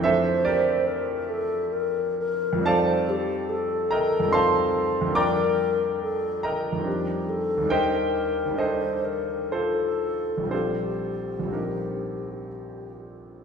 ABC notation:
X:1
M:3/4
L:1/8
Q:1/4=70
K:Bb
V:1 name="Alto flute"
c2 B A B B | c G A4 | B2 A z G A | B2 c B A2 |
G4- G z |]
V:2 name="Grand piano"
[Ac=e] [GBd]4- [GBd] | [Adfa]3 [Begb] [cfac']2 | [dgbd']3 [Begb]2 z | [Gceg]2 [Ace]2 [FAc]2 |
[FAc]2 [EGB]2 z2 |]
V:3 name="Grand piano" clef=bass
[F,,=E,A,CD]6 | [F,,F,G,CE]4 [F,,F,G,CE]2 | [F,,D,G,B,D]4 [F,,E,G,CD]2 | [E,,E,G,DE]2 [E,,E,G,DE]4 |
[B,,,F,G,CD]2 [B,,,F,G,CD]4 |]